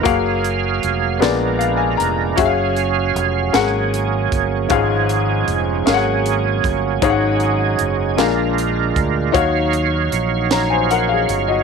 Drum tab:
HH |xxxxxx|xxxxxx|xxxxxx|xxxxxx|
SD |---o--|---o--|---o--|---o--|
BD |o-----|o----o|o----o|o----o|

HH |xxxxxx|
SD |---o--|
BD |o-----|